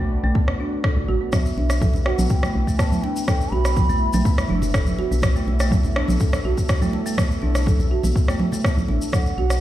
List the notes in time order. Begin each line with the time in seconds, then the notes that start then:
Already playing: A3 D4 F#4 B4 D5
0.00 B1
0.24 B1 A3
0.35 B3, kick
0.48 cross-stick
0.60 D4
0.84 A4, kick, cross-stick
0.97 D2
1.08 A1 F#4
1.21 B3
1.32 G3 B3 E4 B4 E5, kick, cross-stick, muted conga, high conga, shaker
1.45 shaker
1.57 B1 D4, muted conga
1.70 cross-stick, shaker
1.81 A4, kick, high conga, shaker
1.93 B1, muted conga, shaker
2.06 F#4 G5, cross-stick
2.10 F#5
2.18 B1 B3, muted conga, high conga, shaker
2.29 E2 G5, kick, low conga, shaker
2.43 A3, cross-stick, muted conga, shaker
2.55 B1
2.67 A3, kick, muted conga, shaker
2.78 B3 A5, kick, cross-stick, shaker
2.92 high conga, shaker
3.03 D4 G5, muted conga
3.16 shaker
3.27 A4 G5, kick, cross-stick, muted conga, high conga, shaker
3.41 shaker
3.52 B1 F#4 B5, muted conga
3.65 B3, cross-stick, shaker
3.76 kick, high conga, shaker
3.89 B1 A3, muted conga, shaker
4.13 B1 A3, muted conga, high conga, shaker
4.25 B3, kick, low conga, shaker
4.38 cross-stick, muted conga, shaker
4.49 F#1 D4, high conga
4.62 muted conga, low conga, shaker
4.74 A4, kick, cross-stick, shaker
4.86 high conga, shaker
4.99 F#4, muted conga
5.11 B1 B3, shaker
5.22 A4, kick, cross-stick, muted conga, high conga, shaker
5.36 A3, shaker
5.47 B1, muted conga
5.60 A3, cross-stick, shaker
5.71 B3, kick, high conga, shaker
5.83 B1, muted conga, shaker
5.96 D4, cross-stick
6.08 B1, muted conga, high conga, shaker
6.20 E2 A4, kick, low conga, shaker
6.33 cross-stick, muted conga, shaker
6.45 B1 F#4
6.57 B3, kick, muted conga, shaker
6.68 kick, cross-stick, shaker
6.81 A3, high conga, shaker
6.93 muted conga
7.06 A3, shaker
7.18 B3, kick, cross-stick, muted conga, high conga, shaker
7.31 shaker
7.42 B1 D4, muted conga
7.55 cross-stick, shaker
7.66 A4, kick, high conga, shaker
7.79 B1, muted conga, shaker
7.91 F#4
8.03 B1 B3, muted conga, high conga, shaker
8.16 kick, low conga, shaker
8.28 A3, cross-stick, muted conga, shaker
8.40 high conga
8.52 A3, muted conga, low conga, shaker
8.64 B3, kick, cross-stick, shaker
8.77 D2, high conga, shaker
8.88 A1 D4, muted conga
9.02 shaker
9.12 A3 D4 F#4 A4 B4 D5 F#5, kick, cross-stick, muted conga, high conga, shaker
9.26 shaker
9.38 B1 F#4, muted conga
9.50 cross-stick, shaker